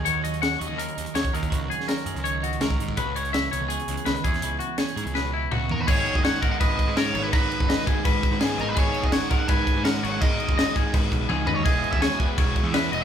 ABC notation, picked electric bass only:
X:1
M:4/4
L:1/16
Q:1/4=166
K:G#m
V:1 name="Picked electric bass" clef=bass
D,,6 D,, D,,2 z D,, z D,, z D,,2 | C,,2 z4 F,, C,,4- C,, C,,2 G,,2 | C,,6 C,, C,,2 z C,, z C,, z E,,2 | C,,2 z4 G,, C,,4- C,, C,,2 D,,2 |
G,,,2 z F,,,2 z G,,, z G,,,2 z G,,3 G,,,2 | G,,,2 z F,,,2 z G,,, z G,,,2 z G,,3 G,,,2 | G,,,2 z F,,,2 z G,,, z G,,,2 z G,,3 G,,,2 | G,,,2 z F,,,2 z G,,, z G,,,2 B,,,2 C,,2 D,,2 |
E,,,2 z D,,2 z E,,, z E,,,2 z E,,3 E,,,2 |]